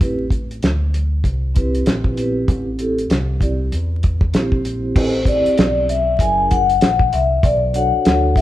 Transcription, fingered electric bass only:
0, 0, Header, 1, 3, 480
1, 0, Start_track
1, 0, Key_signature, 0, "minor"
1, 0, Tempo, 618557
1, 8, Time_signature, 4, 2, 24, 8
1, 6531, End_track
2, 0, Start_track
2, 0, Title_t, "Fingered electric bass"
2, 0, Program_c, 0, 33
2, 8, Note_on_c, 0, 33, 90
2, 464, Note_off_c, 0, 33, 0
2, 487, Note_on_c, 0, 38, 80
2, 943, Note_off_c, 0, 38, 0
2, 964, Note_on_c, 0, 36, 86
2, 1422, Note_off_c, 0, 36, 0
2, 1448, Note_on_c, 0, 34, 87
2, 1904, Note_off_c, 0, 34, 0
2, 1928, Note_on_c, 0, 33, 94
2, 2384, Note_off_c, 0, 33, 0
2, 2409, Note_on_c, 0, 36, 84
2, 2865, Note_off_c, 0, 36, 0
2, 2888, Note_on_c, 0, 40, 94
2, 3344, Note_off_c, 0, 40, 0
2, 3369, Note_on_c, 0, 34, 89
2, 3825, Note_off_c, 0, 34, 0
2, 3849, Note_on_c, 0, 33, 105
2, 4216, Note_off_c, 0, 33, 0
2, 4334, Note_on_c, 0, 35, 93
2, 4787, Note_off_c, 0, 35, 0
2, 4806, Note_on_c, 0, 30, 100
2, 5263, Note_off_c, 0, 30, 0
2, 5296, Note_on_c, 0, 34, 101
2, 5520, Note_off_c, 0, 34, 0
2, 5534, Note_on_c, 0, 36, 94
2, 5759, Note_off_c, 0, 36, 0
2, 5769, Note_on_c, 0, 35, 110
2, 6136, Note_off_c, 0, 35, 0
2, 6254, Note_on_c, 0, 38, 85
2, 6531, Note_off_c, 0, 38, 0
2, 6531, End_track
3, 0, Start_track
3, 0, Title_t, "Muted fingered electric bass strokes"
3, 4240, Note_on_c, 9, 29, 45
3, 4318, Note_off_c, 9, 29, 0
3, 6531, End_track
0, 0, End_of_file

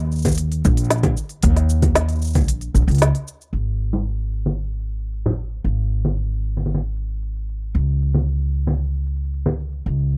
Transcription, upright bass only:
0, 0, Header, 1, 2, 480
1, 0, Start_track
1, 0, Tempo, 526316
1, 1310, Time_signature, 4, 2, 24, 8
1, 9279, End_track
2, 0, Start_track
2, 0, Title_t, "Upright bass"
2, 0, Program_c, 0, 32
2, 0, Note_on_c, 0, 39, 102
2, 555, Note_off_c, 0, 39, 0
2, 594, Note_on_c, 0, 34, 100
2, 1035, Note_off_c, 0, 34, 0
2, 1307, Note_on_c, 0, 39, 99
2, 2267, Note_off_c, 0, 39, 0
2, 2267, Note_on_c, 0, 34, 89
2, 2498, Note_off_c, 0, 34, 0
2, 2503, Note_on_c, 0, 34, 92
2, 2604, Note_off_c, 0, 34, 0
2, 2623, Note_on_c, 0, 37, 95
2, 2820, Note_off_c, 0, 37, 0
2, 3217, Note_on_c, 0, 32, 72
2, 5119, Note_off_c, 0, 32, 0
2, 5148, Note_on_c, 0, 32, 75
2, 7045, Note_off_c, 0, 32, 0
2, 7065, Note_on_c, 0, 37, 74
2, 8963, Note_off_c, 0, 37, 0
2, 8993, Note_on_c, 0, 37, 73
2, 9279, Note_off_c, 0, 37, 0
2, 9279, End_track
0, 0, End_of_file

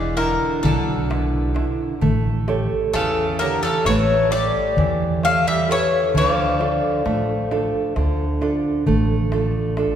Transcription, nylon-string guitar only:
0, 0, Header, 1, 2, 480
1, 0, Start_track
1, 0, Key_signature, -1, "minor"
1, 0, Tempo, 920245
1, 1053, Time_signature, 9, 3, 24, 8
1, 2489, Tempo, 909091
1, 5226, End_track
2, 0, Start_track
2, 0, Title_t, "Nylon-string guitar"
2, 0, Program_c, 0, 24
2, 0, Note_on_c, 0, 52, 69
2, 85, Note_on_c, 0, 62, 45
2, 88, Note_on_c, 0, 64, 45
2, 313, Note_off_c, 0, 52, 0
2, 334, Note_on_c, 0, 47, 62
2, 473, Note_off_c, 0, 62, 0
2, 474, Note_off_c, 0, 64, 0
2, 574, Note_on_c, 0, 62, 49
2, 576, Note_on_c, 0, 64, 44
2, 577, Note_on_c, 0, 71, 53
2, 799, Note_off_c, 0, 62, 0
2, 800, Note_off_c, 0, 47, 0
2, 801, Note_off_c, 0, 64, 0
2, 804, Note_on_c, 0, 62, 41
2, 808, Note_on_c, 0, 64, 40
2, 959, Note_off_c, 0, 71, 0
2, 1000, Note_off_c, 0, 62, 0
2, 1002, Note_off_c, 0, 64, 0
2, 1050, Note_on_c, 0, 57, 71
2, 1292, Note_on_c, 0, 67, 47
2, 1296, Note_on_c, 0, 69, 44
2, 1298, Note_on_c, 0, 73, 50
2, 1517, Note_off_c, 0, 57, 0
2, 1535, Note_on_c, 0, 52, 62
2, 1676, Note_off_c, 0, 67, 0
2, 1679, Note_off_c, 0, 73, 0
2, 1680, Note_off_c, 0, 69, 0
2, 1777, Note_on_c, 0, 67, 51
2, 1779, Note_on_c, 0, 69, 44
2, 1784, Note_on_c, 0, 73, 52
2, 1999, Note_off_c, 0, 52, 0
2, 2023, Note_on_c, 0, 57, 69
2, 2158, Note_off_c, 0, 67, 0
2, 2160, Note_off_c, 0, 69, 0
2, 2162, Note_off_c, 0, 73, 0
2, 2254, Note_on_c, 0, 67, 47
2, 2255, Note_on_c, 0, 69, 41
2, 2257, Note_on_c, 0, 76, 47
2, 2481, Note_off_c, 0, 57, 0
2, 2492, Note_on_c, 0, 52, 64
2, 2637, Note_off_c, 0, 67, 0
2, 2637, Note_off_c, 0, 69, 0
2, 2639, Note_off_c, 0, 76, 0
2, 2735, Note_on_c, 0, 67, 49
2, 2737, Note_on_c, 0, 69, 42
2, 2740, Note_on_c, 0, 73, 50
2, 2960, Note_off_c, 0, 52, 0
2, 2965, Note_off_c, 0, 67, 0
2, 2967, Note_off_c, 0, 69, 0
2, 2970, Note_off_c, 0, 73, 0
2, 2970, Note_on_c, 0, 67, 41
2, 2974, Note_on_c, 0, 69, 42
2, 2976, Note_on_c, 0, 73, 50
2, 3165, Note_off_c, 0, 67, 0
2, 3166, Note_off_c, 0, 69, 0
2, 3168, Note_off_c, 0, 73, 0
2, 3216, Note_on_c, 0, 50, 67
2, 3449, Note_on_c, 0, 62, 46
2, 3451, Note_on_c, 0, 65, 44
2, 3457, Note_on_c, 0, 69, 50
2, 3682, Note_off_c, 0, 50, 0
2, 3694, Note_on_c, 0, 57, 67
2, 3835, Note_off_c, 0, 62, 0
2, 3837, Note_off_c, 0, 65, 0
2, 3840, Note_off_c, 0, 69, 0
2, 3935, Note_on_c, 0, 62, 43
2, 3937, Note_on_c, 0, 65, 42
2, 3940, Note_on_c, 0, 69, 53
2, 4160, Note_off_c, 0, 57, 0
2, 4173, Note_on_c, 0, 50, 56
2, 4319, Note_off_c, 0, 62, 0
2, 4319, Note_off_c, 0, 65, 0
2, 4321, Note_off_c, 0, 69, 0
2, 4411, Note_on_c, 0, 62, 45
2, 4414, Note_on_c, 0, 65, 43
2, 4417, Note_on_c, 0, 69, 51
2, 4638, Note_off_c, 0, 50, 0
2, 4652, Note_on_c, 0, 57, 66
2, 4794, Note_off_c, 0, 62, 0
2, 4797, Note_off_c, 0, 65, 0
2, 4798, Note_off_c, 0, 69, 0
2, 4892, Note_on_c, 0, 62, 45
2, 4895, Note_on_c, 0, 65, 40
2, 4897, Note_on_c, 0, 69, 51
2, 5116, Note_off_c, 0, 57, 0
2, 5123, Note_off_c, 0, 62, 0
2, 5127, Note_off_c, 0, 65, 0
2, 5127, Note_off_c, 0, 69, 0
2, 5129, Note_on_c, 0, 62, 39
2, 5134, Note_on_c, 0, 65, 41
2, 5134, Note_on_c, 0, 69, 42
2, 5226, Note_off_c, 0, 62, 0
2, 5226, Note_off_c, 0, 65, 0
2, 5226, Note_off_c, 0, 69, 0
2, 5226, End_track
0, 0, End_of_file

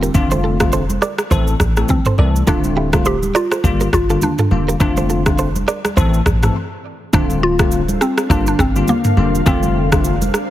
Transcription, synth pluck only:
0, 0, Header, 1, 2, 480
1, 0, Start_track
1, 0, Key_signature, -1, "minor"
1, 0, Tempo, 582524
1, 119, Time_signature, 4, 2, 24, 8
1, 8653, End_track
2, 0, Start_track
2, 0, Title_t, "Synth pluck"
2, 0, Program_c, 0, 84
2, 0, Note_on_c, 0, 60, 98
2, 1289, Note_off_c, 0, 60, 0
2, 1566, Note_on_c, 0, 60, 89
2, 2046, Note_on_c, 0, 62, 105
2, 2057, Note_off_c, 0, 60, 0
2, 2525, Note_on_c, 0, 67, 111
2, 2537, Note_off_c, 0, 62, 0
2, 2767, Note_on_c, 0, 65, 100
2, 2769, Note_off_c, 0, 67, 0
2, 3210, Note_off_c, 0, 65, 0
2, 3246, Note_on_c, 0, 65, 101
2, 3466, Note_off_c, 0, 65, 0
2, 3487, Note_on_c, 0, 62, 96
2, 3956, Note_off_c, 0, 62, 0
2, 3966, Note_on_c, 0, 62, 89
2, 4889, Note_off_c, 0, 62, 0
2, 5885, Note_on_c, 0, 62, 110
2, 6124, Note_on_c, 0, 65, 115
2, 6129, Note_off_c, 0, 62, 0
2, 6606, Note_on_c, 0, 60, 93
2, 6616, Note_off_c, 0, 65, 0
2, 6826, Note_off_c, 0, 60, 0
2, 6845, Note_on_c, 0, 62, 103
2, 6976, Note_off_c, 0, 62, 0
2, 6986, Note_on_c, 0, 62, 94
2, 7076, Note_off_c, 0, 62, 0
2, 7087, Note_on_c, 0, 60, 92
2, 7306, Note_off_c, 0, 60, 0
2, 7326, Note_on_c, 0, 58, 88
2, 7805, Note_on_c, 0, 60, 89
2, 7817, Note_off_c, 0, 58, 0
2, 8489, Note_off_c, 0, 60, 0
2, 8653, End_track
0, 0, End_of_file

